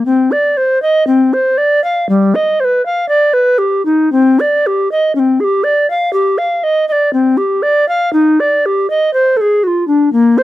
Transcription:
0, 0, Header, 1, 2, 480
1, 0, Start_track
1, 0, Key_signature, -3, "minor"
1, 0, Tempo, 1023891
1, 16, Time_signature, 4, 2, 24, 8
1, 2416, Tempo, 993377
1, 4966, End_track
2, 0, Start_track
2, 0, Title_t, "Recorder"
2, 0, Program_c, 0, 74
2, 26, Note_on_c, 0, 60, 65
2, 148, Note_on_c, 0, 74, 54
2, 155, Note_off_c, 0, 60, 0
2, 268, Note_on_c, 0, 72, 48
2, 276, Note_off_c, 0, 74, 0
2, 381, Note_off_c, 0, 72, 0
2, 386, Note_on_c, 0, 75, 51
2, 498, Note_off_c, 0, 75, 0
2, 502, Note_on_c, 0, 60, 51
2, 625, Note_on_c, 0, 72, 49
2, 632, Note_off_c, 0, 60, 0
2, 739, Note_on_c, 0, 74, 47
2, 746, Note_off_c, 0, 72, 0
2, 857, Note_off_c, 0, 74, 0
2, 863, Note_on_c, 0, 77, 54
2, 976, Note_off_c, 0, 77, 0
2, 981, Note_on_c, 0, 55, 64
2, 1101, Note_on_c, 0, 75, 53
2, 1108, Note_off_c, 0, 55, 0
2, 1220, Note_on_c, 0, 72, 45
2, 1227, Note_off_c, 0, 75, 0
2, 1240, Note_on_c, 0, 71, 49
2, 1245, Note_off_c, 0, 72, 0
2, 1335, Note_off_c, 0, 71, 0
2, 1339, Note_on_c, 0, 77, 53
2, 1444, Note_off_c, 0, 77, 0
2, 1447, Note_on_c, 0, 74, 61
2, 1564, Note_on_c, 0, 71, 53
2, 1571, Note_off_c, 0, 74, 0
2, 1680, Note_on_c, 0, 67, 48
2, 1687, Note_off_c, 0, 71, 0
2, 1804, Note_off_c, 0, 67, 0
2, 1807, Note_on_c, 0, 63, 49
2, 1930, Note_off_c, 0, 63, 0
2, 1933, Note_on_c, 0, 60, 67
2, 2061, Note_on_c, 0, 74, 56
2, 2068, Note_off_c, 0, 60, 0
2, 2187, Note_on_c, 0, 67, 53
2, 2194, Note_off_c, 0, 74, 0
2, 2303, Note_off_c, 0, 67, 0
2, 2305, Note_on_c, 0, 75, 54
2, 2413, Note_off_c, 0, 75, 0
2, 2416, Note_on_c, 0, 61, 50
2, 2435, Note_on_c, 0, 60, 54
2, 2440, Note_off_c, 0, 61, 0
2, 2536, Note_on_c, 0, 68, 49
2, 2543, Note_off_c, 0, 60, 0
2, 2555, Note_on_c, 0, 67, 53
2, 2560, Note_off_c, 0, 68, 0
2, 2650, Note_on_c, 0, 74, 57
2, 2657, Note_off_c, 0, 67, 0
2, 2772, Note_off_c, 0, 74, 0
2, 2778, Note_on_c, 0, 77, 62
2, 2886, Note_off_c, 0, 77, 0
2, 2889, Note_on_c, 0, 67, 60
2, 3009, Note_on_c, 0, 77, 56
2, 3016, Note_off_c, 0, 67, 0
2, 3132, Note_on_c, 0, 75, 59
2, 3140, Note_off_c, 0, 77, 0
2, 3249, Note_off_c, 0, 75, 0
2, 3252, Note_on_c, 0, 75, 55
2, 3270, Note_on_c, 0, 74, 60
2, 3275, Note_off_c, 0, 75, 0
2, 3369, Note_off_c, 0, 74, 0
2, 3372, Note_on_c, 0, 60, 56
2, 3489, Note_on_c, 0, 67, 52
2, 3496, Note_off_c, 0, 60, 0
2, 3610, Note_on_c, 0, 74, 58
2, 3618, Note_off_c, 0, 67, 0
2, 3733, Note_off_c, 0, 74, 0
2, 3736, Note_on_c, 0, 77, 62
2, 3851, Note_off_c, 0, 77, 0
2, 3854, Note_on_c, 0, 63, 71
2, 3985, Note_on_c, 0, 74, 61
2, 3992, Note_off_c, 0, 63, 0
2, 4109, Note_on_c, 0, 67, 57
2, 4117, Note_off_c, 0, 74, 0
2, 4224, Note_off_c, 0, 67, 0
2, 4227, Note_on_c, 0, 75, 59
2, 4337, Note_off_c, 0, 75, 0
2, 4340, Note_on_c, 0, 72, 65
2, 4453, Note_on_c, 0, 69, 53
2, 4460, Note_off_c, 0, 72, 0
2, 4473, Note_on_c, 0, 68, 58
2, 4478, Note_off_c, 0, 69, 0
2, 4581, Note_on_c, 0, 66, 53
2, 4589, Note_off_c, 0, 68, 0
2, 4600, Note_on_c, 0, 65, 58
2, 4605, Note_off_c, 0, 66, 0
2, 4696, Note_off_c, 0, 65, 0
2, 4698, Note_on_c, 0, 62, 54
2, 4815, Note_off_c, 0, 62, 0
2, 4819, Note_on_c, 0, 58, 74
2, 4941, Note_on_c, 0, 72, 61
2, 4948, Note_off_c, 0, 58, 0
2, 4966, Note_off_c, 0, 72, 0
2, 4966, End_track
0, 0, End_of_file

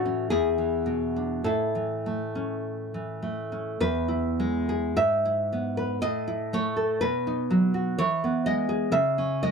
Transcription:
0, 0, Header, 1, 2, 480
1, 0, Start_track
1, 0, Key_signature, 3, "major"
1, 0, Tempo, 1100917
1, 636, Tempo, 1200000
1, 637, Time_signature, 2, 2, 24, 8
1, 1116, Tempo, 1158301
1, 1592, Key_signature, 4, "major"
1, 2076, Tempo, 1056338
1, 2556, Tempo, 991736
1, 3036, Tempo, 966184
1, 4273, End_track
2, 0, Start_track
2, 0, Title_t, "Nylon-string guitar"
2, 0, Program_c, 0, 24
2, 0, Note_on_c, 0, 45, 81
2, 0, Note_on_c, 0, 52, 58
2, 0, Note_on_c, 0, 57, 61
2, 0, Note_on_c, 0, 66, 103
2, 24, Note_on_c, 0, 61, 58
2, 130, Note_off_c, 0, 45, 0
2, 130, Note_off_c, 0, 66, 0
2, 132, Note_on_c, 0, 68, 105
2, 134, Note_off_c, 0, 61, 0
2, 134, Note_on_c, 0, 40, 71
2, 136, Note_on_c, 0, 64, 76
2, 140, Note_off_c, 0, 52, 0
2, 140, Note_off_c, 0, 57, 0
2, 254, Note_on_c, 0, 52, 49
2, 374, Note_on_c, 0, 47, 50
2, 507, Note_on_c, 0, 62, 49
2, 612, Note_off_c, 0, 68, 0
2, 614, Note_off_c, 0, 64, 0
2, 615, Note_off_c, 0, 40, 0
2, 629, Note_on_c, 0, 45, 57
2, 630, Note_on_c, 0, 69, 79
2, 632, Note_off_c, 0, 52, 0
2, 633, Note_off_c, 0, 47, 0
2, 637, Note_off_c, 0, 62, 0
2, 638, Note_on_c, 0, 64, 61
2, 753, Note_on_c, 0, 52, 44
2, 877, Note_on_c, 0, 57, 46
2, 994, Note_on_c, 0, 61, 47
2, 1228, Note_off_c, 0, 52, 0
2, 1233, Note_on_c, 0, 52, 39
2, 1338, Note_off_c, 0, 69, 0
2, 1342, Note_off_c, 0, 64, 0
2, 1345, Note_off_c, 0, 57, 0
2, 1350, Note_on_c, 0, 57, 46
2, 1468, Note_off_c, 0, 61, 0
2, 1473, Note_on_c, 0, 61, 47
2, 1572, Note_off_c, 0, 45, 0
2, 1588, Note_off_c, 0, 57, 0
2, 1590, Note_off_c, 0, 52, 0
2, 1590, Note_off_c, 0, 61, 0
2, 1591, Note_on_c, 0, 40, 77
2, 1593, Note_on_c, 0, 71, 105
2, 1707, Note_on_c, 0, 64, 61
2, 1836, Note_on_c, 0, 56, 70
2, 1957, Note_on_c, 0, 68, 65
2, 2061, Note_off_c, 0, 71, 0
2, 2062, Note_off_c, 0, 40, 0
2, 2072, Note_on_c, 0, 44, 83
2, 2073, Note_on_c, 0, 76, 106
2, 2076, Note_off_c, 0, 64, 0
2, 2077, Note_off_c, 0, 68, 0
2, 2079, Note_off_c, 0, 56, 0
2, 2203, Note_on_c, 0, 64, 59
2, 2326, Note_on_c, 0, 59, 64
2, 2438, Note_on_c, 0, 71, 67
2, 2536, Note_off_c, 0, 76, 0
2, 2539, Note_off_c, 0, 44, 0
2, 2548, Note_off_c, 0, 71, 0
2, 2550, Note_on_c, 0, 75, 112
2, 2553, Note_on_c, 0, 45, 76
2, 2557, Note_off_c, 0, 64, 0
2, 2558, Note_off_c, 0, 59, 0
2, 2674, Note_on_c, 0, 64, 58
2, 2786, Note_off_c, 0, 75, 0
2, 2798, Note_on_c, 0, 57, 66
2, 2801, Note_on_c, 0, 73, 97
2, 2911, Note_on_c, 0, 69, 64
2, 3020, Note_off_c, 0, 45, 0
2, 3027, Note_off_c, 0, 73, 0
2, 3029, Note_on_c, 0, 71, 96
2, 3033, Note_off_c, 0, 69, 0
2, 3033, Note_on_c, 0, 47, 79
2, 3034, Note_off_c, 0, 64, 0
2, 3036, Note_off_c, 0, 57, 0
2, 3158, Note_on_c, 0, 63, 59
2, 3275, Note_on_c, 0, 54, 60
2, 3393, Note_on_c, 0, 66, 65
2, 3498, Note_off_c, 0, 71, 0
2, 3505, Note_off_c, 0, 47, 0
2, 3514, Note_on_c, 0, 73, 116
2, 3516, Note_on_c, 0, 52, 83
2, 3517, Note_off_c, 0, 66, 0
2, 3519, Note_off_c, 0, 54, 0
2, 3521, Note_off_c, 0, 63, 0
2, 3640, Note_on_c, 0, 59, 61
2, 3746, Note_off_c, 0, 73, 0
2, 3749, Note_on_c, 0, 75, 93
2, 3753, Note_on_c, 0, 56, 61
2, 3863, Note_on_c, 0, 68, 64
2, 3974, Note_off_c, 0, 52, 0
2, 3976, Note_on_c, 0, 49, 82
2, 3977, Note_off_c, 0, 75, 0
2, 3979, Note_on_c, 0, 76, 101
2, 3991, Note_off_c, 0, 68, 0
2, 3995, Note_off_c, 0, 56, 0
2, 3998, Note_off_c, 0, 59, 0
2, 4108, Note_on_c, 0, 61, 60
2, 4217, Note_off_c, 0, 76, 0
2, 4230, Note_on_c, 0, 75, 97
2, 4235, Note_on_c, 0, 56, 63
2, 4273, Note_off_c, 0, 49, 0
2, 4273, Note_off_c, 0, 56, 0
2, 4273, Note_off_c, 0, 61, 0
2, 4273, Note_off_c, 0, 75, 0
2, 4273, End_track
0, 0, End_of_file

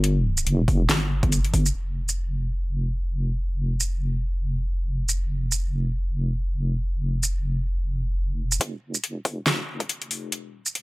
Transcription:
0, 0, Header, 1, 3, 480
1, 0, Start_track
1, 0, Tempo, 428571
1, 41, Time_signature, 4, 2, 24, 8
1, 12120, End_track
2, 0, Start_track
2, 0, Title_t, "Wobble bass"
2, 0, Program_c, 0, 39
2, 0, Note_on_c, 0, 31, 97
2, 506, Note_off_c, 0, 31, 0
2, 521, Note_on_c, 0, 29, 101
2, 985, Note_off_c, 0, 29, 0
2, 1002, Note_on_c, 0, 31, 99
2, 1946, Note_off_c, 0, 31, 0
2, 1961, Note_on_c, 0, 29, 85
2, 9621, Note_off_c, 0, 29, 0
2, 9642, Note_on_c, 0, 29, 94
2, 11065, Note_off_c, 0, 29, 0
2, 11082, Note_on_c, 0, 29, 95
2, 11743, Note_off_c, 0, 29, 0
2, 11743, Note_on_c, 0, 28, 95
2, 12025, Note_off_c, 0, 28, 0
2, 12042, Note_on_c, 0, 27, 93
2, 12120, Note_off_c, 0, 27, 0
2, 12120, End_track
3, 0, Start_track
3, 0, Title_t, "Drums"
3, 43, Note_on_c, 9, 42, 82
3, 155, Note_off_c, 9, 42, 0
3, 419, Note_on_c, 9, 82, 53
3, 522, Note_on_c, 9, 42, 81
3, 531, Note_off_c, 9, 82, 0
3, 634, Note_off_c, 9, 42, 0
3, 762, Note_on_c, 9, 36, 102
3, 763, Note_on_c, 9, 46, 60
3, 874, Note_off_c, 9, 36, 0
3, 875, Note_off_c, 9, 46, 0
3, 1002, Note_on_c, 9, 38, 117
3, 1002, Note_on_c, 9, 42, 83
3, 1114, Note_off_c, 9, 38, 0
3, 1114, Note_off_c, 9, 42, 0
3, 1378, Note_on_c, 9, 36, 100
3, 1378, Note_on_c, 9, 42, 57
3, 1482, Note_off_c, 9, 42, 0
3, 1482, Note_on_c, 9, 42, 80
3, 1482, Note_on_c, 9, 82, 57
3, 1490, Note_off_c, 9, 36, 0
3, 1594, Note_off_c, 9, 42, 0
3, 1594, Note_off_c, 9, 82, 0
3, 1618, Note_on_c, 9, 42, 57
3, 1721, Note_on_c, 9, 36, 56
3, 1721, Note_on_c, 9, 46, 97
3, 1730, Note_off_c, 9, 42, 0
3, 1833, Note_off_c, 9, 36, 0
3, 1833, Note_off_c, 9, 46, 0
3, 1857, Note_on_c, 9, 82, 58
3, 1969, Note_off_c, 9, 82, 0
3, 2337, Note_on_c, 9, 82, 50
3, 2449, Note_off_c, 9, 82, 0
3, 4259, Note_on_c, 9, 82, 49
3, 4371, Note_off_c, 9, 82, 0
3, 5698, Note_on_c, 9, 82, 57
3, 5810, Note_off_c, 9, 82, 0
3, 6178, Note_on_c, 9, 82, 52
3, 6290, Note_off_c, 9, 82, 0
3, 8098, Note_on_c, 9, 82, 54
3, 8210, Note_off_c, 9, 82, 0
3, 9538, Note_on_c, 9, 82, 62
3, 9641, Note_on_c, 9, 36, 108
3, 9641, Note_on_c, 9, 42, 78
3, 9650, Note_off_c, 9, 82, 0
3, 9753, Note_off_c, 9, 36, 0
3, 9753, Note_off_c, 9, 42, 0
3, 10018, Note_on_c, 9, 82, 49
3, 10121, Note_on_c, 9, 42, 77
3, 10130, Note_off_c, 9, 82, 0
3, 10233, Note_off_c, 9, 42, 0
3, 10361, Note_on_c, 9, 36, 105
3, 10361, Note_on_c, 9, 46, 56
3, 10473, Note_off_c, 9, 36, 0
3, 10473, Note_off_c, 9, 46, 0
3, 10601, Note_on_c, 9, 38, 118
3, 10601, Note_on_c, 9, 42, 85
3, 10713, Note_off_c, 9, 38, 0
3, 10713, Note_off_c, 9, 42, 0
3, 10978, Note_on_c, 9, 36, 62
3, 10979, Note_on_c, 9, 42, 54
3, 11081, Note_off_c, 9, 42, 0
3, 11081, Note_on_c, 9, 42, 79
3, 11090, Note_off_c, 9, 36, 0
3, 11193, Note_off_c, 9, 42, 0
3, 11218, Note_on_c, 9, 42, 50
3, 11321, Note_on_c, 9, 46, 87
3, 11330, Note_off_c, 9, 42, 0
3, 11433, Note_off_c, 9, 46, 0
3, 11561, Note_on_c, 9, 42, 78
3, 11673, Note_off_c, 9, 42, 0
3, 11938, Note_on_c, 9, 82, 53
3, 12043, Note_on_c, 9, 42, 72
3, 12050, Note_off_c, 9, 82, 0
3, 12120, Note_off_c, 9, 42, 0
3, 12120, End_track
0, 0, End_of_file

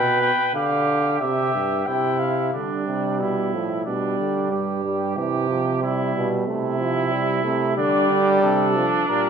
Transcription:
0, 0, Header, 1, 5, 480
1, 0, Start_track
1, 0, Tempo, 655738
1, 1853, Time_signature, 4, 2, 24, 8
1, 6804, End_track
2, 0, Start_track
2, 0, Title_t, "Cornet"
2, 0, Program_c, 0, 56
2, 0, Note_on_c, 0, 79, 81
2, 154, Note_off_c, 0, 79, 0
2, 160, Note_on_c, 0, 79, 85
2, 395, Note_off_c, 0, 79, 0
2, 399, Note_on_c, 0, 77, 79
2, 869, Note_off_c, 0, 77, 0
2, 873, Note_on_c, 0, 76, 81
2, 1363, Note_on_c, 0, 79, 77
2, 1374, Note_off_c, 0, 76, 0
2, 1606, Note_on_c, 0, 77, 66
2, 1617, Note_off_c, 0, 79, 0
2, 1851, Note_off_c, 0, 77, 0
2, 5690, Note_on_c, 0, 74, 86
2, 6136, Note_off_c, 0, 74, 0
2, 6171, Note_on_c, 0, 69, 83
2, 6635, Note_off_c, 0, 69, 0
2, 6648, Note_on_c, 0, 70, 87
2, 6804, Note_off_c, 0, 70, 0
2, 6804, End_track
3, 0, Start_track
3, 0, Title_t, "Trumpet"
3, 0, Program_c, 1, 56
3, 0, Note_on_c, 1, 71, 91
3, 393, Note_off_c, 1, 71, 0
3, 408, Note_on_c, 1, 67, 87
3, 877, Note_off_c, 1, 67, 0
3, 889, Note_on_c, 1, 67, 80
3, 1362, Note_off_c, 1, 67, 0
3, 1379, Note_on_c, 1, 64, 71
3, 1847, Note_off_c, 1, 64, 0
3, 1851, Note_on_c, 1, 62, 66
3, 2343, Note_on_c, 1, 64, 65
3, 2354, Note_off_c, 1, 62, 0
3, 2814, Note_off_c, 1, 64, 0
3, 2818, Note_on_c, 1, 62, 69
3, 3289, Note_off_c, 1, 62, 0
3, 3301, Note_on_c, 1, 67, 62
3, 3770, Note_off_c, 1, 67, 0
3, 3787, Note_on_c, 1, 67, 78
3, 4253, Note_off_c, 1, 67, 0
3, 4268, Note_on_c, 1, 64, 75
3, 4617, Note_off_c, 1, 64, 0
3, 4742, Note_on_c, 1, 64, 81
3, 5672, Note_off_c, 1, 64, 0
3, 5691, Note_on_c, 1, 62, 90
3, 6156, Note_off_c, 1, 62, 0
3, 6164, Note_on_c, 1, 62, 92
3, 6804, Note_off_c, 1, 62, 0
3, 6804, End_track
4, 0, Start_track
4, 0, Title_t, "Trombone"
4, 0, Program_c, 2, 57
4, 1862, Note_on_c, 2, 55, 78
4, 2591, Note_on_c, 2, 53, 68
4, 2602, Note_off_c, 2, 55, 0
4, 2826, Note_off_c, 2, 53, 0
4, 2831, Note_on_c, 2, 55, 79
4, 3530, Note_off_c, 2, 55, 0
4, 3547, Note_on_c, 2, 55, 78
4, 3778, Note_off_c, 2, 55, 0
4, 3782, Note_on_c, 2, 52, 72
4, 4016, Note_off_c, 2, 52, 0
4, 4020, Note_on_c, 2, 53, 77
4, 4254, Note_off_c, 2, 53, 0
4, 4259, Note_on_c, 2, 55, 73
4, 4735, Note_on_c, 2, 57, 78
4, 4746, Note_off_c, 2, 55, 0
4, 4970, Note_off_c, 2, 57, 0
4, 4974, Note_on_c, 2, 53, 76
4, 5205, Note_on_c, 2, 55, 70
4, 5216, Note_off_c, 2, 53, 0
4, 5439, Note_off_c, 2, 55, 0
4, 5443, Note_on_c, 2, 57, 79
4, 5680, Note_off_c, 2, 57, 0
4, 5685, Note_on_c, 2, 55, 107
4, 6413, Note_on_c, 2, 53, 83
4, 6424, Note_off_c, 2, 55, 0
4, 6645, Note_off_c, 2, 53, 0
4, 6649, Note_on_c, 2, 55, 97
4, 6804, Note_off_c, 2, 55, 0
4, 6804, End_track
5, 0, Start_track
5, 0, Title_t, "Euphonium"
5, 0, Program_c, 3, 58
5, 0, Note_on_c, 3, 47, 95
5, 227, Note_off_c, 3, 47, 0
5, 400, Note_on_c, 3, 50, 98
5, 854, Note_off_c, 3, 50, 0
5, 886, Note_on_c, 3, 48, 84
5, 1123, Note_off_c, 3, 48, 0
5, 1128, Note_on_c, 3, 43, 75
5, 1365, Note_off_c, 3, 43, 0
5, 1370, Note_on_c, 3, 48, 90
5, 1844, Note_off_c, 3, 48, 0
5, 1854, Note_on_c, 3, 50, 65
5, 2079, Note_off_c, 3, 50, 0
5, 2096, Note_on_c, 3, 48, 66
5, 2336, Note_on_c, 3, 47, 59
5, 2347, Note_off_c, 3, 48, 0
5, 2576, Note_off_c, 3, 47, 0
5, 2581, Note_on_c, 3, 45, 63
5, 2816, Note_off_c, 3, 45, 0
5, 2825, Note_on_c, 3, 47, 63
5, 3058, Note_off_c, 3, 47, 0
5, 3061, Note_on_c, 3, 50, 60
5, 3302, Note_on_c, 3, 43, 70
5, 3313, Note_off_c, 3, 50, 0
5, 3780, Note_on_c, 3, 48, 84
5, 3791, Note_off_c, 3, 43, 0
5, 4498, Note_off_c, 3, 48, 0
5, 4505, Note_on_c, 3, 47, 84
5, 4733, Note_off_c, 3, 47, 0
5, 4737, Note_on_c, 3, 48, 89
5, 5437, Note_off_c, 3, 48, 0
5, 5452, Note_on_c, 3, 48, 88
5, 5684, Note_off_c, 3, 48, 0
5, 5690, Note_on_c, 3, 50, 80
5, 5920, Note_off_c, 3, 50, 0
5, 5925, Note_on_c, 3, 50, 77
5, 6159, Note_off_c, 3, 50, 0
5, 6166, Note_on_c, 3, 48, 82
5, 6469, Note_off_c, 3, 48, 0
5, 6643, Note_on_c, 3, 46, 69
5, 6804, Note_off_c, 3, 46, 0
5, 6804, End_track
0, 0, End_of_file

